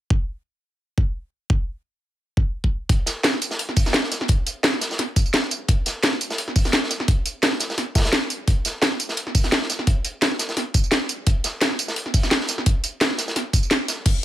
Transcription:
0.10 kick
0.98 kick
1.50 kick
2.37 kick
2.64 kick
2.89 kick, closed hi-hat
3.06 snare, closed hi-hat, tambourine
3.24 snare, closed hi-hat
3.34 snare
3.42 closed hi-hat, tambourine
3.51 snare, tambourine
3.59 closed hi-hat
3.69 snare
3.76 kick, closed hi-hat, open hi-hat, tambourine
3.86 snare, tambourine
3.93 snare, closed hi-hat
4.03 snare
4.12 snare, closed hi-hat, tambourine
4.21 snare
4.28 kick, closed hi-hat
4.46 closed hi-hat, tambourine
4.63 snare, closed hi-hat
4.73 snare
4.81 snare, closed hi-hat, open hi-hat, tambourine
4.91 snare, tambourine
4.98 snare, closed hi-hat
5.16 kick, closed hi-hat, tambourine
5.26 tambourine
5.33 snare, closed hi-hat
5.51 closed hi-hat, tambourine
5.68 kick, closed hi-hat
5.86 snare, closed hi-hat, tambourine
6.03 snare, closed hi-hat
6.13 snare
6.21 closed hi-hat, tambourine
6.30 snare, tambourine
6.38 closed hi-hat
6.48 snare
6.56 kick, closed hi-hat, open hi-hat, tambourine
6.65 snare, tambourine
6.73 snare, closed hi-hat
6.84 snare
6.91 snare, closed hi-hat, tambourine
7.00 snare
7.08 kick, closed hi-hat
7.26 closed hi-hat, tambourine
7.43 snare, closed hi-hat
7.52 snare
7.60 snare, closed hi-hat, open hi-hat, tambourine
7.70 snare, tambourine
7.78 snare, closed hi-hat
7.95 kick, snare, closed hi-hat, tambourine
8.00 snare, closed hi-hat
8.05 snare, closed hi-hat, tambourine
8.13 snare, closed hi-hat
8.30 closed hi-hat, tambourine
8.48 kick, closed hi-hat
8.65 snare, closed hi-hat, tambourine
8.82 snare, closed hi-hat
8.92 snare
9.00 closed hi-hat, tambourine
9.09 snare, tambourine
9.17 closed hi-hat
9.27 snare
9.35 kick, closed hi-hat, open hi-hat, tambourine
9.44 snare, tambourine
9.52 snare, closed hi-hat
9.62 snare
9.70 snare, closed hi-hat, tambourine
9.79 snare
9.87 kick, closed hi-hat
10.05 closed hi-hat, tambourine
10.22 snare, closed hi-hat
10.31 snare
10.39 snare, closed hi-hat, open hi-hat, tambourine
10.49 snare, tambourine
10.57 snare, closed hi-hat
10.74 kick, closed hi-hat, tambourine
10.84 tambourine
10.91 snare, closed hi-hat
11.09 closed hi-hat, tambourine
11.27 kick, closed hi-hat
11.44 snare, closed hi-hat, tambourine
11.61 snare, closed hi-hat
11.71 snare
11.79 closed hi-hat, tambourine
11.88 snare, tambourine
11.96 closed hi-hat
12.06 snare
12.14 kick, closed hi-hat, open hi-hat, tambourine
12.23 snare, tambourine
12.31 snare, closed hi-hat
12.40 snare
12.48 snare, closed hi-hat, tambourine
12.58 snare
12.66 kick, closed hi-hat
12.84 closed hi-hat, tambourine
13.01 snare, closed hi-hat
13.11 snare
13.18 snare, closed hi-hat, open hi-hat, tambourine
13.28 snare, tambourine
13.36 snare, closed hi-hat
13.53 kick, closed hi-hat, tambourine
13.63 tambourine
13.71 snare, closed hi-hat
13.88 snare, closed hi-hat, tambourine
14.06 kick, closed hi-hat, crash

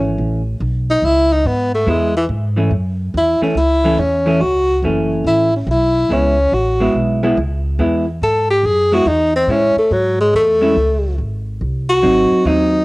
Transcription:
Already playing: G#1 E3 A3 C#4
0.18 A1
0.60 B1
0.90 D#4
1.02 C#2 E4
1.33 D#4
1.45 G#2 B3
1.75 A3
1.86 E2 G#3 B3 E4
2.17 E3
2.29 G#2
2.56 E3 A3 C#4
2.71 F#2
3.14 E2 E4
3.41 E3 A3 C#4, muted upright bass stroke
3.55 C#2 E4
3.84 E3 A3 C#4
3.98 E2 C#4
4.26 E3 A3 C#4
4.41 C#2 F#4
4.82 F#1 E3 A3 C#4
5.24 A1 E4
5.56 C#4
5.67 B1
5.71 E4
6.09 C#2 G#3 B3 E4
6.13 C#4
6.52 A1 F#4
6.80 G#3 B3 E4
6.94 B1
7.23 G#3 B3 E4
7.37 C#2
7.79 E2 G#3 B3 E4
8.22 G#2 A4
8.51 G4
8.63 F#2 G#4
8.92 G#3 B3 E4 F#4
9.06 E2 D#4
9.36 C4
9.48 A2 G#3 C#4 E4
9.76 A3, muted upright bass stroke
9.91 G#2 F#3
10.20 G#3
10.34 E2 A3
10.61 G#3 C#4 E4
10.76 C#2
11.18 G#1
11.61 C2
11.89 F#4
12.02 G#1 F#3 C4 D#4
12.31 muted upright bass stroke
12.45 D#2 F#3 C4 D#4

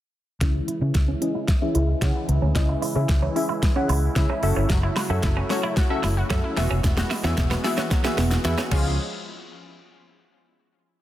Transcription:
0.41 C#2 C#3 E3 G#3 C#4 E4 G#4 E5, kick, snare, closed hi-hat
0.54 E4, muted clean electric guitar stroke
0.68 E4 E5, closed hi-hat
0.81 C#3 E3 C#4 E4 G#4 E5
0.94 C#2 E4, kick, snare, closed hi-hat
1.08 C#4 E5
1.21 E3 C#4 E4 G#4 D#5, muted clean electric guitar stroke, closed hi-hat
1.35 E4
1.48 E5, kick, snare, closed hi-hat
1.62 E3 C#4 E4 G#4 E5
1.75 C#2 E4, closed hi-hat
1.88 E5
2.02 C#3 C#4 E4 G#4 F#5, kick, snare, closed hi-hat
2.15 E4
2.29 C#2 E5, muted clean electric guitar stroke, closed hi-hat
2.42 D2 C#4
2.55 C#2 C#4 E4 G#4 D#5, kick, snare, closed hi-hat
2.69 E5, muted clean electric guitar stroke
2.82 E4, open hi-hat
2.95 C#3 C#4 E4 G#4 E5
3.09 C#2, kick, snare, closed hi-hat
3.22 E3 C#4
3.36 C#4 E4 G#4 E5, muted clean electric guitar stroke, open hi-hat
3.49 E4 E5
3.63 E3, muted clean electric guitar stroke, kick, snare, closed hi-hat
3.76 C#4 E4 G#4 F#5
3.89 C#2 E4, open hi-hat
4.16 C#3 C#4 E4 G#4 E5, kick, snare, closed hi-hat
4.29 C#4 E5
4.43 F#1 F#3 A3 C#4 F#4 A4 E5, muted clean electric guitar stroke, open hi-hat
4.56 G1 C#4 E4
4.70 F#1 F#3, kick, snare, closed hi-hat
4.83 E4, muted clean electric guitar stroke
4.96 E4 F#4, snare, open hi-hat
5.10 F#2 F#3 C#4 F#4 A4 E5
5.23 F#1 E4, kick, snare, closed hi-hat
5.37 C#4 F#4
5.50 F#3 C#4 F#4 A4 C#5, muted clean electric guitar stroke, snare, open hi-hat
5.63 E4
5.77 F#4, kick, snare, closed hi-hat
5.90 F#3 C#4 F#4 A4 E5
6.04 F#1 E4, snare, open hi-hat
6.17 F#4
6.30 F#2 C#4 F#4 A4 E5, kick, snare, closed hi-hat
6.44 E4
6.57 E1 E3 G#3 B3 F#4 G#4 E5, muted clean electric guitar stroke, snare, open hi-hat
6.71 F1 C#4
6.84 E1, kick, snare, closed hi-hat, shaker
6.97 F#4, muted clean electric guitar stroke, snare, shaker
7.11 E4, snare, open hi-hat, shaker
7.24 E2 B3 C#4 E4 F#4 G#4 E5, snare, shaker
7.37 E1, kick, snare, closed hi-hat, shaker
7.51 F#3 B3, snare, shaker
7.64 B3 E4 F#4 G#4 E5, muted clean electric guitar stroke, snare, open hi-hat, shaker
7.78 C#4 F#4, snare, shaker
7.91 F#3, muted clean electric guitar stroke, kick, snare, closed hi-hat, shaker
8.04 B3 F#4 G#4 E5, snare, shaker
8.18 E1 B3, snare, open hi-hat, shaker
8.31 snare, shaker
8.45 E2 B3 E4 F#4 G#4 E5, snare, closed hi-hat, shaker
8.58 C#4 F#4, snare, shaker
8.71 C#2 F3 G#3 C#4 F4 G#4 F5, kick, crash

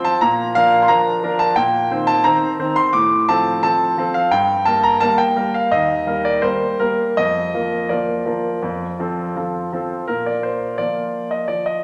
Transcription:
Already playing: F3 C4 C5
0.05 A5
0.21 A#2 A#5
0.55 F3 D4 A#4 F5
0.82 C6
0.88 F3 D4 A#4 A#5
1.23 F3 D4 A#4
1.39 A5
1.56 A#2 G5
1.91 D#3 C4 C5
2.07 A5
2.24 D#3 C4 C5 A#5
2.59 D#3 C4 C5
2.76 C6
2.93 A2 D6
3.29 F3 C4 A4 A5
3.63 F3 C4 A4 A5
3.98 F3 C4 A4
4.14 F5
4.31 G2 G5
4.65 G3 A#3 A#4 A5
4.83 A#5
5.00 G3 A#3 A#4 A5
5.18 G5
5.36 G3 A#3 A#4
5.54 F5
5.72 D#2 D#5
6.07 G3 A#3 A#4
6.25 D5
6.42 G3 A#3 A#4 C5
6.80 G3 A#3 A#4
7.17 F2 D#5
7.54 F3 A#3 A#4
7.89 F3 A#3 A#4 D5
8.26 F3 A#3 A#4
8.62 F2
8.99 F3 C4 A4
9.36 F3 C4 A4
9.72 F3 C4 A4
10.08 A#2 A#4
10.26 D5
10.43 C5
10.78 F3 A#3 F4 D5
11.31 D#5
11.48 F3 D5
11.66 D#5

